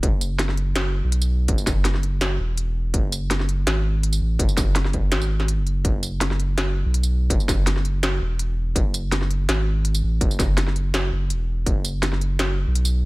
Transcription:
<<
  \new Staff \with { instrumentName = "Sub bass" } { \clef bass \time 4/4 \key fis \minor \tempo 4 = 165 fis,,2~ fis,,8. b,,4~ b,,16 | fis,,2~ fis,,8 e,,4. | fis,,2 gis,,4. a,,8 | fis,,2 gis,,4~ gis,,16 fis,,8. |
fis,,2~ fis,,8. b,,4~ b,,16 | fis,,2~ fis,,8 e,,4. | fis,,2 gis,,4. a,,8 | fis,,2~ fis,,8 fis,,8 e,,4 |
fis,,2~ fis,,8. b,,4~ b,,16 | }
  \new DrumStaff \with { instrumentName = "Drums" } \drummode { \time 4/4 <hh bd>8 <hh tamb>8 <hh sn>16 sn16 hh8 <hh sn>4 hh16 tamb8. | <hh bd>16 tamb16 <hh bd sn tamb>8 <hh sn>16 sn16 hh8 <hh sn>4 hh4 | <hh bd>8 <hh tamb>8 <hh sn>16 sn16 hh8 <hh sn>4 hh16 tamb8. | <hh bd>16 tamb16 <hh bd sn tamb>8 <hh sn>16 sn16 <hh bd>8 <hh sn>16 tamb8 sn16 hh8 hh8 |
<hh bd>8 <hh tamb>8 <hh sn>16 sn16 hh8 <hh sn>4 hh16 tamb8. | <hh bd>16 tamb16 <hh bd sn tamb>8 <hh sn>16 sn16 hh8 <hh sn>4 hh4 | <hh bd>8 <hh tamb>8 <hh sn>16 sn16 hh8 <hh sn>4 hh16 tamb8. | <hh bd>16 tamb16 <hh bd sn tamb>8 <hh sn>16 sn16 hh8 <hh sn>4 hh4 |
<hh bd>8 <hh tamb>8 <hh sn>16 sn16 hh8 <hh sn>4 hh16 tamb8. | }
>>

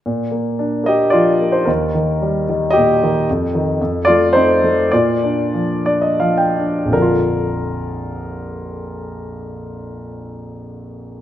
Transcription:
<<
  \new Staff \with { instrumentName = "Grand piano" } { \time 3/4 \key bes \major \tempo 4 = 102 << { r2. | r2. | r2. | r4. d''16 ees''16 f''16 g''8. |
r2. | r2. | } \\ { r4. <g' ees''>8 <f' d''>8. <ees' c''>16 | <ees' bes'>4. r8 <g' ees''>8. r16 | r4. <f' d''>8 <ees' c''>4 | <f' d''>2 r4 |
bes'2.~ | bes'2. | } >> }
  \new Staff \with { instrumentName = "Grand piano" } { \clef bass \time 3/4 \key bes \major bes,8 bes8 d'8 bes8 f8 bes8 | ees,8 ees8 g8 ees8 bes,8 ees8 | f,8 ees8 f,8 a8 c'8 a8 | bes,8 d'8 f8 d'8 f8 d'8 |
<bes,, f, d f bes f'>2.~ | <bes,, f, d f bes f'>2. | }
>>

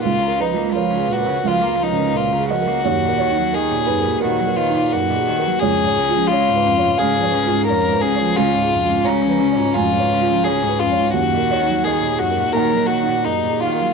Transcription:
<<
  \new Staff \with { instrumentName = "Felt piano" } { \time 4/4 \key ees \minor \tempo 4 = 86 << { r8 ces''8 des''4 f''4. ees''8 | des''8 des''4 ces''8 bes'4. r8 | des''2 f''2 | aes''4 bes''4 aes''4 aes''4 |
r8 des''8 ees''4 ges''4. f''8 | } \\ { \tuplet 3/2 { des,8 bes'8 f'8 bes'8 aes'8 bes'8 des,8 f'8 des8 bes'8 aes'8 bes'8 } | \tuplet 3/2 { ees,8 bes'8 ees'8 bes'8 aes'8 bes'8 bes,8 bes'8 ees'8 bes'8 aes'8 bes'8 } | \tuplet 3/2 { des,8 des''8 f'8 des''8 ces''8 des''8 aes,8 des''8 f'8 des''8 ces''8 des''8 } | \tuplet 3/2 { des,8 aes'8 f'8 des''8 ces''8 des''8 aes,8 des''8 f'8 des''8 ces''8 des''8 } |
\tuplet 3/2 { ees,8 bes'8 ees'8 bes'8 aes'8 bes'8 bes,8 bes'8 ees'8 bes'8 aes'8 bes'8 } | } >> }
  \new Staff \with { instrumentName = "Marimba" } { \time 4/4 \key ees \minor bes'16 bes''16 f''16 bes'16 bes''16 r16 bes'16 des''16 bes'16 bes''16 bes''16 bes'16 des''16 bes''16 bes'16 des''16 | ees'16 ees''16 bes'16 ees'16 ees''16 r16 ees'16 ges'16 ees'16 ees''16 ees''16 ees'16 r16 ees''16 ees'16 ges'16 | des'16 des''16 aes'16 des'16 des''16 r16 des'16 f'16 des'16 des''16 des''16 des'16 f'16 des''16 des'16 f'16 | des'16 des''16 aes'16 des'16 des''16 r16 des'16 f'16 r16 des''16 des''16 des'16 f'16 des''16 des'16 f'16 |
ees'16 ees''16 bes'16 ees'16 ees''16 r16 ees'16 r16 ees'16 ees''16 ees''16 ees'16 ges'16 ees''16 ees'16 ges'16 | }
  \new Staff \with { instrumentName = "Violin" } { \time 4/4 \key ees \minor f'8 ees'8 f'8 ges'8 f'8 ees'8 f'8 ges'8~ | ges'4 aes'4 ges'8 f'8 ges'4 | aes'4 f'4 aes'4 bes'8 aes'8 | f'4 des'4 f'4 aes'8 f'8 |
ges'4 aes'8 ges'8 bes'8 ges'8 ees'8 f'8 | }
  \new Staff \with { instrumentName = "Cello" } { \clef bass \time 4/4 \key ees \minor bes,16 des16 f16 bes16 f16 des16 bes,16 des16 f16 bes16 f16 des16 bes,16 des16 f16 bes16 | ges,16 bes,16 ees16 ges16 ees16 bes,16 ges,16 bes,16 ees16 ges16 ees16 bes,16 ges,16 bes,16 ees16 ges16 | f,16 aes,16 des16 f16 des16 aes,16 f,16 aes,16 des16 f16 des16 aes,16 f,16 aes,16 des16 f16 | des16 aes,16 f,16 aes,16 des16 f16 des16 aes,16 f,16 aes,16 des16 f16 des16 aes,16 f,16 aes,16 |
ges,16 bes,16 ees16 ges16 ees16 bes,16 ges,16 bes,16 ees16 ges16 ees16 bes,16 ges,16 bes,16 ees16 ges16 | }
>>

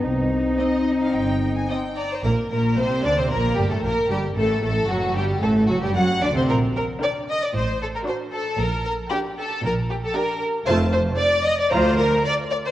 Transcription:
<<
  \new Staff \with { instrumentName = "Violin section" } { \time 4/4 \key c \minor \tempo 4 = 114 r4 ees''8. f''16 g''8. aes''16 g''8 bes''8 | \key g \minor bes'8 bes'8 c''8 d''16 c''16 bes'8 g'16 a'16 bes'8 g'8 | a'8 a'8 fis'8 g'8 a'8 fis'16 g'16 fis''8 d''16 c''16 | r4 g''4 r4 a''4 |
r4 g''4 r4 g''4 | a''8 r4. bes''8 r4. | }
  \new Staff \with { instrumentName = "Violin section" } { \time 4/4 \key c \minor << { r4 ees''4 r4 ees''4 | \key g \minor r1 | r1 | r1 |
r1 | r1 | } \\ { r2. ees''8 d''16 c''16 | bes'8 bes'8 c''8 d''16 c''16 bes'8 g'16 a'16 bes'8 g'8 | a'8 a'8 fis'8 g'8 a'8 fis'16 g'16 fis''8 d''16 c''16 | bes'8 bes'8 d''8 ees''16 d''16 c''8 a'16 bes'16 c''8 a'8 |
bes'8 bes'8 g'8 a'8 bes'8 g'16 a'16 bes'8 r8 | c''8 c''8 d''8 ees''16 d''16 c''8 bes'8 d''8 d''16 c''16 | } >> }
  \new Staff \with { instrumentName = "French horn section" } { \time 4/4 \key c \minor c'2.~ c'8 r8 | \key g \minor r1 | r1 | r1 |
r1 | r1 | }
  \new Staff \with { instrumentName = "Viola section" } { \time 4/4 \key c \minor r4 c'4 r4 c'4 | \key g \minor bes8 bes8 c'8 d'16 c'16 bes8 g16 a16 bes8 g8 | a8 a8 fis8 g8 a8 fis16 g16 fis'8 d'16 c'16 | r4 <d' bes'>4 r4 <d' fis'>4 |
r4 <d' g'>4 r4 <d' g'>4 | <a f'>8 r4. <f f'>8 r4. | }
  \new Staff \with { instrumentName = "Cello section" } { \clef bass \time 4/4 \key c \minor ees'2.~ ees'8 r8 | \key g \minor bes,8 bes,8 c8 d16 c16 bes,8 g,16 a,16 bes,8 g,8 | a,8 a,8 fis,8 g,8 a,8 fis,16 g,16 fis8 d16 c16 | bes,4 r4 a,4 r4 |
bes,4 r4 bes,4 r4 | f,4 r4 d,4 r4 | }
  \new Staff \with { instrumentName = "Double bass section" } { \clef bass \time 4/4 \key c \minor c,4 r4 g,,4 r4 | \key g \minor bes,,8 bes,,8 c,8 d,16 r16 bes,,8 g,,16 r16 bes,,8 g,,8 | a,,8 a,,8 fis,,8 g,,8 a,,8 fis,,16 r16 fis,8 d,16 r16 | bes,,4 r4 a,,4 r4 |
bes,,4 r4 bes,,4 r4 | f,,4 r4 d,4 r4 | }
>>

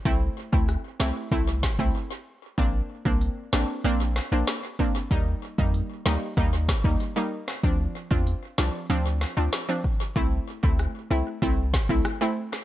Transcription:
<<
  \new Staff \with { instrumentName = "Synth pluck" } { \time 4/4 \key c \mixolydian \tempo 4 = 95 <a c' e'>8. <a c' e'>8. <a c' e'>8 <a c' e'>8. <a c' e'>16 r4 | <bes c' d'>8. <bes c' d'>8. <bes c' d'>8 <bes c' d'>8. <bes c' d'>16 r8 <bes c' d'>16 r16 | <g bes ees'>8. <g bes ees'>8. <g bes ees'>8 <g bes ees'>8. <g bes ees'>16 r16 <g bes ees'>16 r8 | <f c' d'>8. <c' d' f'>8. <f c' d'>8 <f c' d'>8. <f c' d'>16 r16 <f c' d'>16 r8 |
<a c' e'>8. <a c' e'>8. <a c' e'>8 <a c' e'>8. <a c' e'>16 r16 <a c' e'>16 r8 | }
  \new Staff \with { instrumentName = "808-style bass" } { \clef bass \time 4/4 \key c \mixolydian c,8 r16 d,8 r16 c,16 r16 c,8. c,16 r4 | bes,,8 r16 c,8 r16 a,,16 r16 bes,,8. bes,,16 r4 | ees,8 r16 f,8 r16 d,16 r16 ees,8. ees,16 r4 | d,8 r16 e,8 r16 c,16 r16 d,8. d,16 r4 |
c,8 r16 d,8 r16 c,16 r16 c,8. c,16 r4 | }
  \new DrumStaff \with { instrumentName = "Drums" } \drummode { \time 4/4 <hh bd>8. bd16 <hh ss>8 sn8 <hh bd>8 <bd sn>16 bd16 r4 | <hh bd>8. bd16 hh8 sn8 hh8 sn8 <hh sn>8 bd8 | <hh bd>8. bd16 hh8 sn8 <hh bd>8 <bd sn>16 bd16 hh8. sn16 | <hh bd>8. bd16 hh8 sn8 hh8 sn8 <hh sn>8 bd8 |
<hh bd>8. bd16 <hh ss>4 <hh bd>8 <bd sn>16 bd16 <hh ss>8. sn16 | }
>>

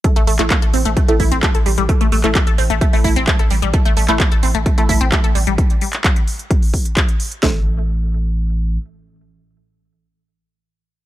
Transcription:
<<
  \new Staff \with { instrumentName = "Synth stab" } { \time 4/4 \key c \mixolydian \tempo 4 = 130 r8. <a e' a'>16 r4 r16 <a e' a'>16 <a e' a'>16 r4 r16 | r8. <a e' a'>16 r4 r16 <a e' a'>16 <a e' a'>16 r4 r16 | r8. <a e' a'>16 r4 r16 <a e' a'>16 <a e' a'>16 r4 r16 | r1 |
<a e' a'>1~ | <a e' a'>1 | }
  \new Staff \with { instrumentName = "Synth arpeggio sound" } { \time 4/4 \key c \mixolydian a16 a16 a16 a16 bes16 a'16 c'16 a16 a16 a16 e'16 c'16 a16 a'16 g16 g16 | a16 a16 a16 a16 bes16 a'16 c'16 a16 a16 a16 e'16 c'16 a16 a'16 g16 g16 | a16 a16 a16 a16 bes16 a'16 c'16 a16 a16 a16 e'16 c'16 a16 a'16 g16 g16 | r1 |
a8 r2. r8 | r1 | }
  \new Staff \with { instrumentName = "Sub bass" } { \clef bass \time 4/4 \key c \mixolydian r16 a,,16 a,,16 a,,16 r16 a,,16 a,,16 a,,16 r16 a,,16 a,,16 a,,16 r16 a,,16 a,,16 a,,16 | r16 a,,16 a,,16 a,,16 r16 a,,16 a,,16 a,,16 r16 a,,16 a,,16 a,,16 r16 a,,16 a,,16 a,,16 | r16 a,,16 a,,16 a,,16 r16 a,,16 a,,16 a,,16 r16 a,,16 a,,16 a,,16 r16 a,,16 a,,16 a,,16 | r1 |
a,,2. r4 | r1 | }
  \new DrumStaff \with { instrumentName = "Drums" } \drummode { \time 4/4 <hh bd>16 hh16 hho16 <hc hh>16 <hc hh bd>16 hh16 hho16 hh16 <hh bd>16 hh16 <hho bd>16 hh16 <hc hh bd>16 hh16 hho16 hh16 | <hh bd>16 hh16 hho16 <hc hh>16 <hc hh bd>16 hh16 hho16 hh16 <hh bd>16 hho16 <hho bd>16 hh16 <hc hh bd>16 hh16 hho16 hh16 | <hh bd>16 hh16 hho16 <hc hh>16 <hc hh bd>16 hh16 hho16 hh16 <hh bd>16 hh16 <hho bd>16 hh16 <hc hh bd>16 hh16 hho16 hh16 | <hh bd>16 hh16 hho16 <hc hh>16 <hc hh bd>16 hh16 hho16 hh16 <hh bd>16 hho16 <hho bd>16 hh16 <hc hh bd>16 hh16 hho16 hh16 |
<bd sn>4 r4 r4 r4 | r4 r4 r4 r4 | }
>>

